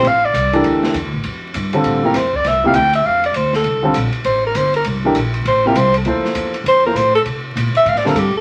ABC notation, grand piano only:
X:1
M:4/4
L:1/8
Q:"Swing" 1/4=200
K:Dm
V:1 name="Grand piano"
z3 [E,DGAB]3 z2 | z3 [D,G,CFA]2 [C,F,B,EG] z2 | z [C,F,B,EG] z6 | z [D,G,CFA] z6 |
z [E,A,DGB] z3 [C,F,B,EG] z2 | [F,B,EAc]3 z2 [F,B,EAc] z2 | z4 z [D,G,CFA] z2 |]